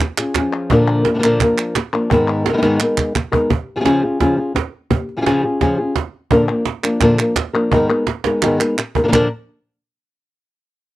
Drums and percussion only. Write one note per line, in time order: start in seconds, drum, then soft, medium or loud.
0.00 clap medium
0.18 clap medium
0.35 cajon bass medium
0.35 cajon slap loud
0.35 clap medium
0.70 cajon bass loud
1.05 cajon slap loud
1.23 cajon slap soft
1.23 clap medium
1.40 cajon bass loud
1.40 clap medium
1.58 clap medium
1.75 cajon slap loud
1.75 clap medium
2.11 cajon bass loud
2.46 cajon slap loud
2.63 cajon slap medium
2.80 clap medium
2.98 cajon bass medium
2.98 clap medium
3.15 cajon bass medium
3.15 clap medium
3.33 cajon bass loud
3.50 cajon bass loud
3.86 cajon slap loud
4.04 cajon slap soft
4.21 cajon bass loud
4.21 cajon slap soft
4.56 cajon bass medium
4.56 cajon slap loud
4.91 cajon bass loud
5.09 cajon slap soft
5.26 cajon slap loud
5.61 cajon bass loud
5.61 cajon slap soft
5.96 cajon bass medium
5.96 cajon slap loud
6.31 cajon bass loud
6.66 cajon slap loud
6.84 cajon slap soft
6.84 clap medium
7.01 cajon bass loud
7.01 cajon slap soft
7.01 clap medium
7.19 clap medium
7.36 cajon bass medium
7.36 cajon slap loud
7.36 clap medium
7.72 cajon bass loud
7.89 cajon slap soft
8.07 cajon slap loud
8.24 cajon slap loud
8.42 cajon slap medium
8.42 clap medium
8.60 clap medium
8.78 clap medium
8.95 cajon bass medium
9.13 cajon bass loud
9.13 clap loud